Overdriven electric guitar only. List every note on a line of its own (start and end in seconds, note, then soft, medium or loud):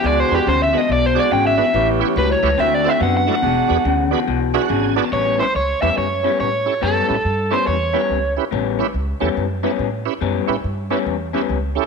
0.06 0.20 D5 loud
0.20 0.33 C5 medium
0.35 0.47 G4 medium
0.49 0.61 C5 loud
0.63 0.78 E5 loud
0.78 0.90 D#5 loud
0.92 1.04 D5 loud
1.06 1.18 C5 medium
1.19 1.32 D5 medium
1.33 1.46 G5 medium
1.47 1.87 E5 loud
2.18 2.31 B4 loud
2.32 2.59 C#5 loud
2.60 2.74 E5 loud
2.74 2.89 D5 medium
2.89 3.02 E5 medium
3.03 3.15 F#5 loud
3.17 4.39 F#5 loud
5.13 5.40 C#5 medium
5.40 5.54 C5 medium
5.56 5.81 C#5 medium
5.82 5.96 E5 loud
5.98 6.39 C#5 medium
6.40 6.84 C#5 medium
6.82 7.54 A4 medium
7.53 7.67 C5 medium
7.67 8.33 C#5 medium